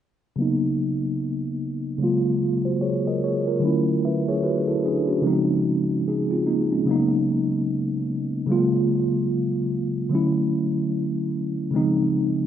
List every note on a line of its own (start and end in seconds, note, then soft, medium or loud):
0.36 1.43 C#3 medium
0.36 1.44 F#3 medium
0.36 1.45 A#3 medium
0.40 1.45 B3 medium
0.40 1.46 D#4 medium
1.98 3.05 C#3 medium
1.98 3.06 F#3 medium
1.98 3.07 G#3 medium
1.98 3.07 A#3 medium
2.04 2.42 F4 medium
2.65 2.80 F#4 soft
2.65 2.80 C5 medium
2.81 3.05 G#4 soft
2.81 3.04 C#5 medium
3.07 3.22 A#4 medium
3.07 3.21 D#5 medium
3.24 3.46 G#4 soft
3.24 3.46 C#5 medium
3.47 3.85 F4 soft
3.47 3.85 A#4 medium
3.60 4.67 D3 medium
3.60 4.68 F#3 medium
3.60 4.69 A3 medium
3.64 4.03 C#4 medium
3.64 4.04 E4 medium
4.05 4.27 B4 soft
4.05 4.27 E5 medium
4.28 4.43 G#4 medium
4.28 4.43 C#5 medium
4.44 4.67 F#4 medium
4.44 4.66 B4 medium
4.68 4.83 E4 medium
4.68 4.82 A4 medium
4.85 5.08 D4 soft
4.85 5.08 G#4 medium
5.08 5.47 C#4 soft
5.08 5.46 F#4 medium
5.22 6.29 C#3 medium
5.22 6.30 F3 medium
5.22 6.05 G#3 medium
5.26 6.06 C4 medium
5.26 6.06 D#4 medium
6.08 6.30 D#4 soft
6.08 6.30 G#4 medium
6.31 6.45 C4 soft
6.31 6.45 F4 medium
6.46 6.70 A#3 medium
6.46 6.69 D#4 medium
6.72 7.10 G#3 medium
6.72 7.10 C#4 medium
6.86 7.92 C#3 medium
6.86 7.93 F#3 medium
6.86 7.94 A#3 medium
6.86 7.94 B3 medium
6.91 7.95 D#4 medium
8.46 9.54 C#3 medium
8.46 9.54 F#3 medium
8.46 9.55 G#3 medium
8.50 9.56 A#3 medium
8.50 9.56 F4 medium
10.09 11.16 D3 medium
10.09 11.17 F#3 medium
10.09 11.18 A3 medium
10.09 11.18 C#4 medium
10.15 11.19 E4 medium
11.71 12.47 C#3 medium
11.71 11.80 D#3 medium
11.71 12.47 G#3 medium
11.75 12.47 F3 medium
11.75 12.47 C4 medium
11.75 12.47 D#4 medium